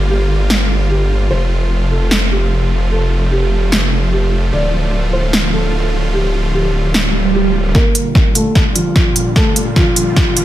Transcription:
0.00 1.29 G1 medium
0.00 1.27 D3 medium
0.00 1.27 G3 medium
0.00 1.27 A#3 medium
0.00 4.49 F4 medium
0.10 0.82 G4 medium
0.50 snare loud
0.90 1.15 G4 medium
1.31 4.51 F1 medium
1.31 4.50 C3 medium
1.31 7.71 F3 medium
1.31 7.71 A3 medium
1.31 1.83 C5 medium
1.91 2.15 A4 medium
2.11 snare loud
2.31 2.84 G4 medium
2.92 3.16 A4 medium
3.32 4.04 G4 medium
3.72 snare loud
4.12 4.37 G4 medium
4.53 7.73 D1 medium
4.53 7.72 D3 medium
4.53 7.72 F4 medium
4.53 5.05 D5 medium
5.13 5.37 C5 medium
5.33 snare loud
5.53 6.06 A4 medium
6.14 6.38 G4 medium
6.54 7.27 G4 medium
6.94 snare loud
6.94 swell medium
7.35 7.59 G4 medium
7.75 10.45 A#2 medium
7.75 10.45 D3 medium
7.75 10.45 G3 medium
7.75 8.27 A#3 medium
7.75 10.45 F4 medium
7.75 8.27 A#4 medium
7.75 kick medium
7.75 snare soft
7.75 riser medium
7.95 closed hi-hat medium
8.15 kick loud
8.15 snare soft
8.35 8.60 A3 medium
8.35 8.60 A4 medium
8.35 closed hi-hat medium
8.55 kick medium
8.55 snare soft
8.75 9.28 F3 medium
8.75 9.28 F4 medium
8.75 closed hi-hat medium
8.96 kick medium
8.96 snare medium
9.16 closed hi-hat medium
9.36 9.60 A3 medium
9.36 9.60 A4 medium
9.36 kick loud
9.36 snare medium
9.56 closed hi-hat medium
9.76 10.45 F3 medium
9.76 10.45 F4 medium
9.76 kick medium
9.76 snare medium
9.96 closed hi-hat medium
10.16 kick medium
10.16 snare medium
10.37 closed hi-hat medium

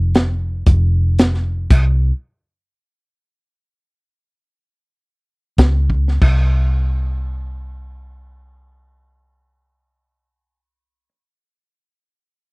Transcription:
0.00 0.63 F1 medium
0.15 snare loud
0.15 closed hi-hat medium
0.66 1.67 F1 medium
0.66 kick loud
0.66 closed hi-hat medium
1.19 snare loud
1.19 closed hi-hat medium
1.34 snare soft
1.70 2.11 C2 loud
1.70 kick loud
1.70 closed hi-hat medium
1.70 crash medium
5.58 6.18 C#2 medium
5.58 kick medium
5.58 snare loud
5.58 closed hi-hat medium
5.90 kick medium
6.08 snare soft
6.21 11.08 C2 medium
6.21 kick loud
6.21 crash medium

